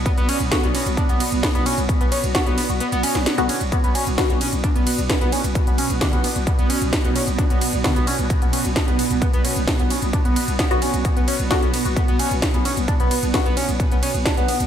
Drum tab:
RD |--x---x---x---x-|--x---x---x---x-|--x---x---x---x-|--x---x---x---x-|
HH |xxoxxxoxxxoxxxox|xxoxxxoxxxoxxxox|xxoxxxoxxxoxxxox|xxoxxxoxxxoxxxox|
SD |----o-------o---|----o------oo---|----o-------o---|----o-------o---|
BD |o---o---o---o---|o---o-----------|o---o---o---o---|o---o---o---o---|

RD |--x---x---x---x-|--x---x---x---x-|--x---x---x---x-|--x---x---x---x-|
HH |xxoxxxoxxxoxxxox|xxoxxxoxxxoxxxox|xxoxxxoxxxoxxxox|xxoxxxoxxxoxxxox|
SD |----o-------o---|----o-------o---|----o-------o---|----o-------o---|
BD |o---o---o---o---|o---o---o---o---|o---o---o---o---|o---o---o---o---|